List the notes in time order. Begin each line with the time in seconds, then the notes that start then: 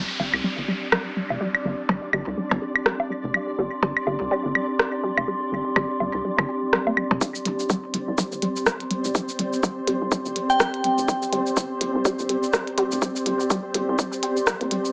Already playing: C4 D4 G4 D5, downlifter
0.20 G1 G3, low woodblock
0.34 C2, high woodblock
0.44 G3 C6
0.58 G1
0.68 G3
0.92 G3, cross-stick, high woodblock
1.16 G3
1.30 F1, low woodblock
1.41 G3
1.55 high woodblock
1.65 G1 G3
1.89 G1 G3, percussion blips
2.13 G1 G3, high woodblock
2.27 C2
2.37 G3
2.51 G1, percussion blips
2.62 G3
2.76 high woodblock
2.86 G3, cross-stick
3.00 low woodblock
3.10 G3
3.24 F1
3.34 G3, high woodblock
3.58 G1 G3
3.83 G1 G3, percussion blips
3.97 high woodblock
4.07 G1 G3, low woodblock
4.21 C2
4.31 G3
4.45 G1
4.55 G3, high woodblock
4.79 G3, cross-stick
5.04 G3
5.17 F1, high woodblock, low woodblock
5.28 G3
5.52 G1 G3
5.76 G1 G3, percussion blips, high woodblock
6.00 G1 G3, low woodblock
6.14 C2
6.25 G3
6.38 G1, percussion blips, high woodblock
6.49 G4
6.73 G3, cross-stick
6.87 A#3, low woodblock
6.97 G3, high woodblock
7.11 F1, percussion blips
7.21 G3 C4 C5, kick, cabasa
7.35 cabasa
7.45 G1 G3, closed hi-hat
7.59 cabasa
7.70 G1 G3, kick, cabasa
7.94 G1 G3, closed hi-hat
8.08 C2
8.18 G3, kick, cabasa
8.32 G1, cabasa
8.42 G3, closed hi-hat
8.56 cabasa
8.66 G3, kick, cross-stick, cabasa
8.80 closed hi-hat
8.91 G3, closed hi-hat
9.05 F1, cabasa
9.15 G3, kick, cabasa
9.29 cabasa
9.39 G1 G3, closed hi-hat
9.53 cabasa
9.63 G1 G3, kick, cabasa
9.87 G1 G3, closed hi-hat
10.01 C2
10.12 G3, kick, cabasa
10.25 G1, cabasa
10.36 G3, closed hi-hat
10.50 G5, cabasa
10.60 G3, kick, cross-stick, cabasa
10.74 closed hi-hat
10.84 G3, closed hi-hat
10.98 F1, cabasa
11.08 G3, kick, cabasa
11.22 cabasa
11.33 G1 G3, closed hi-hat
11.47 cabasa
11.57 G1 G3, kick, cabasa
11.81 G1 G3, closed hi-hat
11.95 C2
12.05 G3, kick, cabasa
12.19 G1, cabasa
12.29 G3, closed hi-hat
12.43 cabasa
12.53 G3, kick, cross-stick, cabasa
12.67 closed hi-hat
12.78 G3, closed hi-hat
12.92 F1, cabasa
13.02 G3, kick, cabasa
13.16 cabasa
13.26 G1 G3, closed hi-hat
13.40 cabasa
13.50 G1 G3, kick, cabasa
13.74 G1 G3, closed hi-hat
13.88 C2
13.99 G3, kick, cabasa
14.13 cabasa
14.23 G4, closed hi-hat
14.37 cabasa
14.47 G3, kick, cross-stick, cabasa
14.61 D1 A#3, closed hi-hat
14.71 G3, closed hi-hat
14.85 cabasa